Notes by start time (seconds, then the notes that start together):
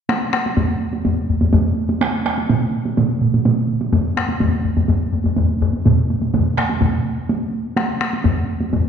0.09 taiko rim, taiko high
0.33 taiko rim, taiko high
0.46 taiko high
0.57 taiko low-mid, taiko high
0.93 taiko high
1.05 taiko low-mid, taiko high
1.30 taiko low-mid
1.41 taiko low-mid, taiko high
1.53 taiko low-mid, taiko high
1.89 taiko high
2.01 taiko rim, taiko high
2.26 taiko rim, taiko high
2.38 taiko high
2.49 taiko mid, taiko high
2.85 taiko high
2.97 taiko mid, taiko high
3.21 taiko mid
3.34 taiko mid, taiko high
3.45 taiko mid, taiko high
3.81 taiko high
3.93 taiko low-mid, taiko high
4.17 taiko rim, taiko high
4.29 taiko high
4.40 taiko low-mid, taiko high
4.65 taiko low-mid
4.77 taiko low-mid, taiko high
4.88 taiko low-mid, taiko high
5.13 taiko low-mid
5.24 taiko low-mid, taiko high
5.36 taiko low-mid, taiko high
5.62 taiko low-mid
5.73 taiko high
5.85 taiko low-mid, taiko mid, taiko high
6.10 taiko high
6.22 taiko high
6.34 taiko low-mid, taiko mid, taiko high
6.58 taiko rim
6.70 taiko high
6.81 taiko low-mid, taiko mid, taiko high
7.29 taiko high
7.76 taiko rim, taiko high
8.01 taiko rim, taiko high
8.13 taiko high
8.24 taiko low-mid, taiko high
8.61 taiko high
8.73 taiko low-mid, taiko high